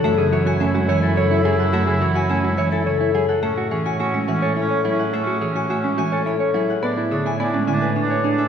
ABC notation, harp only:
X:1
M:3/4
L:1/16
Q:1/4=106
K:F#m
V:1 name="Harp"
[Acefa]2 c g e2 g A c2 G f | e2 c g e2 g A c2 G f | [K:A] e2 c g e2 g A c2 G f | e2 c g e2 g A c2 G f |
d2 c g d2 g B c2 G e |]